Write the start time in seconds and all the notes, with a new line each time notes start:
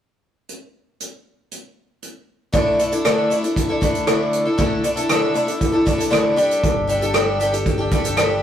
0.49 closed hi-hat
1.00 closed hi-hat
1.51 closed hi-hat
2.03 closed hi-hat
2.53 D3 A3 D4 E4 A4, kick, closed hi-hat
2.79 A3 D4 E4 A4, closed hi-hat
2.92 D4 E4 A4, closed hi-hat
3.05 D3 A3 D4 E4 A4, cross-stick, closed hi-hat
3.30 A3 D4 E4 A4, closed hi-hat
3.43 D4 E4 A4, closed hi-hat
3.56 kick, closed hi-hat
3.69 D4 E4 A4
3.81 A3 D4 E4 A4, kick, closed hi-hat
3.95 closed hi-hat
4.07 D3 A3 D4 E4 A4, cross-stick, closed hi-hat
4.33 closed hi-hat
4.45 D4 E4 A4
4.58 D3 A3 D4 E4 A4, kick, closed hi-hat
4.84 A3 D4 E4 A4, closed hi-hat
4.96 D4 E4 A4, closed hi-hat
5.09 D3 A3 D4 E4 A4, cross-stick, closed hi-hat
5.34 A3 D4 E4 A4, closed hi-hat
5.47 D4 E4 A4, closed hi-hat
5.61 kick, closed hi-hat
5.72 D4 E4 A4
5.85 A3 D4 E4 A4, kick, closed hi-hat
5.98 D4 E4 A4, closed hi-hat
6.10 D3 A3 D4 E4 A4, cross-stick, closed hi-hat
6.36 G3 D4 G4 A4, closed hi-hat
6.51 closed hi-hat
6.63 G1, kick, closed hi-hat
6.87 G3 D4 G4 A4, closed hi-hat
7.01 D4 G4 A4, closed hi-hat
7.14 G3 D4 G4 A4, cross-stick, closed hi-hat
7.40 G3 D4 G4 A4, closed hi-hat
7.53 D4 G4 A4, closed hi-hat
7.66 kick, closed hi-hat
7.78 D4 G4 A4
7.91 G3 D4 G4 A4, kick, closed hi-hat
8.04 D4 G4 A4, closed hi-hat
8.17 G3 D4 G4 A4, cross-stick, closed hi-hat